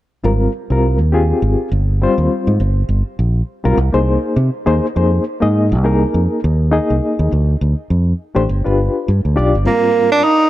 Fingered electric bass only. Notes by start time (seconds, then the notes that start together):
0.24 G#1
0.70 C2
1.00 D#2
1.42 G#1
1.72 G1
2.18 D#2
2.47 G#2
2.60 G1
2.89 G1
3.19 A#1
3.65 B1
3.77 C2
3.94 C2
4.36 C3
4.67 D#2
4.96 F2
5.42 G#2
5.72 C2
6.14 F2
6.44 D#2
6.90 C2
7.19 D#2
7.32 D2
7.61 D2
7.90 F2
8.36 A1
8.49 G1
8.66 G1
9.08 G2
9.25 D2
9.38 B1
9.55 G1